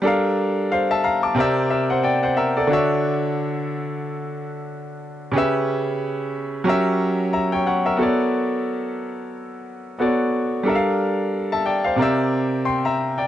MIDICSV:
0, 0, Header, 1, 2, 480
1, 0, Start_track
1, 0, Key_signature, 2, "minor"
1, 0, Tempo, 663717
1, 39, Time_signature, 4, 2, 24, 8
1, 9600, End_track
2, 0, Start_track
2, 0, Title_t, "Grand piano"
2, 0, Program_c, 0, 0
2, 0, Control_c, 0, 64, 127
2, 13, Note_on_c, 0, 55, 75
2, 23, Note_on_c, 0, 62, 68
2, 36, Note_on_c, 0, 69, 68
2, 44, Note_on_c, 0, 70, 68
2, 47, Control_c, 0, 64, 0
2, 53, Note_on_c, 0, 77, 83
2, 189, Control_c, 0, 64, 127
2, 507, Note_off_c, 0, 77, 0
2, 518, Note_on_c, 0, 77, 69
2, 522, Note_on_c, 0, 72, 56
2, 650, Note_off_c, 0, 77, 0
2, 652, Note_off_c, 0, 72, 0
2, 656, Note_on_c, 0, 81, 71
2, 657, Note_on_c, 0, 76, 62
2, 750, Note_on_c, 0, 82, 68
2, 752, Note_off_c, 0, 76, 0
2, 752, Note_off_c, 0, 81, 0
2, 755, Note_on_c, 0, 77, 62
2, 885, Note_off_c, 0, 82, 0
2, 888, Note_off_c, 0, 77, 0
2, 890, Note_on_c, 0, 86, 63
2, 894, Note_on_c, 0, 81, 53
2, 963, Note_off_c, 0, 55, 0
2, 969, Note_off_c, 0, 62, 0
2, 973, Note_on_c, 0, 48, 85
2, 975, Note_off_c, 0, 69, 0
2, 980, Note_off_c, 0, 70, 0
2, 981, Note_on_c, 0, 60, 75
2, 992, Note_on_c, 0, 70, 74
2, 1003, Note_on_c, 0, 74, 75
2, 1004, Control_c, 0, 64, 0
2, 1013, Note_on_c, 0, 76, 89
2, 1113, Control_c, 0, 64, 127
2, 1120, Note_off_c, 0, 86, 0
2, 1122, Note_off_c, 0, 81, 0
2, 1222, Note_off_c, 0, 76, 0
2, 1225, Note_off_c, 0, 70, 0
2, 1233, Note_on_c, 0, 76, 67
2, 1234, Note_off_c, 0, 74, 0
2, 1236, Note_on_c, 0, 70, 55
2, 1366, Note_off_c, 0, 76, 0
2, 1368, Note_off_c, 0, 70, 0
2, 1375, Note_on_c, 0, 78, 66
2, 1381, Note_on_c, 0, 72, 61
2, 1470, Note_off_c, 0, 78, 0
2, 1472, Note_on_c, 0, 79, 72
2, 1473, Note_off_c, 0, 72, 0
2, 1478, Note_on_c, 0, 74, 64
2, 1605, Note_off_c, 0, 79, 0
2, 1608, Note_off_c, 0, 74, 0
2, 1612, Note_on_c, 0, 78, 69
2, 1617, Note_on_c, 0, 72, 57
2, 1708, Note_off_c, 0, 78, 0
2, 1710, Note_off_c, 0, 72, 0
2, 1713, Note_on_c, 0, 76, 69
2, 1717, Note_on_c, 0, 70, 59
2, 1845, Note_off_c, 0, 76, 0
2, 1847, Note_off_c, 0, 70, 0
2, 1857, Note_on_c, 0, 74, 67
2, 1863, Note_on_c, 0, 69, 51
2, 1922, Note_off_c, 0, 48, 0
2, 1926, Note_off_c, 0, 60, 0
2, 1934, Note_on_c, 0, 50, 73
2, 1945, Note_on_c, 0, 62, 65
2, 1955, Note_on_c, 0, 66, 71
2, 1961, Control_c, 0, 64, 0
2, 1966, Note_on_c, 0, 73, 69
2, 1975, Note_on_c, 0, 76, 79
2, 2082, Note_off_c, 0, 74, 0
2, 2085, Note_off_c, 0, 69, 0
2, 2085, Control_c, 0, 64, 127
2, 3828, Note_off_c, 0, 50, 0
2, 3834, Note_off_c, 0, 62, 0
2, 3839, Note_off_c, 0, 66, 0
2, 3844, Note_off_c, 0, 73, 0
2, 3844, Note_on_c, 0, 49, 75
2, 3849, Note_off_c, 0, 76, 0
2, 3857, Note_on_c, 0, 61, 66
2, 3869, Note_on_c, 0, 67, 66
2, 3876, Control_c, 0, 64, 0
2, 3879, Note_on_c, 0, 71, 67
2, 3889, Note_on_c, 0, 76, 85
2, 3997, Control_c, 0, 64, 127
2, 4794, Note_off_c, 0, 49, 0
2, 4800, Note_off_c, 0, 61, 0
2, 4803, Note_on_c, 0, 54, 78
2, 4807, Note_off_c, 0, 67, 0
2, 4811, Note_on_c, 0, 61, 73
2, 4812, Note_off_c, 0, 71, 0
2, 4817, Note_off_c, 0, 76, 0
2, 4823, Note_on_c, 0, 67, 67
2, 4832, Note_on_c, 0, 70, 71
2, 4834, Control_c, 0, 64, 0
2, 4841, Note_on_c, 0, 76, 85
2, 4970, Control_c, 0, 64, 127
2, 5063, Note_off_c, 0, 70, 0
2, 5068, Note_off_c, 0, 76, 0
2, 5301, Note_on_c, 0, 82, 68
2, 5305, Note_on_c, 0, 76, 53
2, 5435, Note_off_c, 0, 82, 0
2, 5437, Note_off_c, 0, 76, 0
2, 5440, Note_on_c, 0, 79, 69
2, 5446, Note_on_c, 0, 73, 55
2, 5537, Note_off_c, 0, 73, 0
2, 5538, Note_off_c, 0, 79, 0
2, 5545, Note_on_c, 0, 78, 65
2, 5548, Note_on_c, 0, 73, 57
2, 5677, Note_off_c, 0, 78, 0
2, 5679, Note_off_c, 0, 73, 0
2, 5683, Note_on_c, 0, 76, 61
2, 5686, Note_on_c, 0, 70, 49
2, 5754, Note_off_c, 0, 54, 0
2, 5758, Note_off_c, 0, 61, 0
2, 5761, Note_on_c, 0, 59, 63
2, 5764, Note_off_c, 0, 67, 0
2, 5770, Note_on_c, 0, 66, 57
2, 5781, Note_on_c, 0, 69, 60
2, 5795, Control_c, 0, 64, 0
2, 5795, Note_on_c, 0, 73, 60
2, 5805, Note_on_c, 0, 74, 69
2, 5910, Control_c, 0, 64, 127
2, 5911, Note_off_c, 0, 76, 0
2, 5913, Note_off_c, 0, 70, 0
2, 7186, Note_off_c, 0, 59, 0
2, 7190, Note_off_c, 0, 66, 0
2, 7196, Note_off_c, 0, 69, 0
2, 7203, Note_off_c, 0, 73, 0
2, 7208, Note_off_c, 0, 74, 0
2, 7222, Note_on_c, 0, 59, 52
2, 7229, Note_on_c, 0, 66, 50
2, 7235, Note_on_c, 0, 69, 50
2, 7241, Note_on_c, 0, 73, 46
2, 7245, Note_on_c, 0, 74, 58
2, 7690, Note_on_c, 0, 55, 70
2, 7698, Note_off_c, 0, 69, 0
2, 7701, Note_on_c, 0, 62, 61
2, 7705, Note_off_c, 0, 59, 0
2, 7709, Note_off_c, 0, 66, 0
2, 7709, Note_on_c, 0, 69, 62
2, 7715, Note_off_c, 0, 73, 0
2, 7717, Note_off_c, 0, 74, 0
2, 7719, Control_c, 0, 64, 0
2, 7720, Note_on_c, 0, 70, 61
2, 7733, Note_on_c, 0, 76, 60
2, 7775, Note_off_c, 0, 76, 0
2, 7777, Note_on_c, 0, 77, 74
2, 7852, Control_c, 0, 64, 127
2, 8215, Note_off_c, 0, 77, 0
2, 8333, Note_on_c, 0, 81, 62
2, 8336, Note_on_c, 0, 76, 53
2, 8427, Note_off_c, 0, 81, 0
2, 8429, Note_off_c, 0, 76, 0
2, 8430, Note_on_c, 0, 79, 65
2, 8434, Note_on_c, 0, 74, 55
2, 8563, Note_off_c, 0, 79, 0
2, 8565, Note_off_c, 0, 74, 0
2, 8565, Note_on_c, 0, 77, 60
2, 8572, Note_on_c, 0, 72, 48
2, 8643, Note_off_c, 0, 55, 0
2, 8648, Note_off_c, 0, 62, 0
2, 8651, Note_on_c, 0, 48, 73
2, 8652, Note_off_c, 0, 69, 0
2, 8658, Note_off_c, 0, 70, 0
2, 8663, Note_on_c, 0, 60, 68
2, 8673, Note_on_c, 0, 70, 67
2, 8679, Control_c, 0, 64, 0
2, 8683, Note_on_c, 0, 74, 69
2, 8693, Note_on_c, 0, 76, 81
2, 8796, Note_off_c, 0, 77, 0
2, 8800, Note_off_c, 0, 72, 0
2, 8818, Control_c, 0, 64, 127
2, 9149, Note_off_c, 0, 74, 0
2, 9151, Note_on_c, 0, 84, 62
2, 9152, Note_on_c, 0, 79, 52
2, 9154, Note_off_c, 0, 76, 0
2, 9284, Note_off_c, 0, 84, 0
2, 9285, Note_off_c, 0, 79, 0
2, 9293, Note_on_c, 0, 82, 61
2, 9298, Note_on_c, 0, 76, 58
2, 9522, Note_off_c, 0, 82, 0
2, 9524, Note_off_c, 0, 76, 0
2, 9531, Note_on_c, 0, 79, 60
2, 9535, Note_on_c, 0, 74, 50
2, 9600, Note_off_c, 0, 48, 0
2, 9600, Note_off_c, 0, 60, 0
2, 9600, Note_off_c, 0, 70, 0
2, 9600, Note_off_c, 0, 74, 0
2, 9600, Note_off_c, 0, 79, 0
2, 9600, End_track
0, 0, End_of_file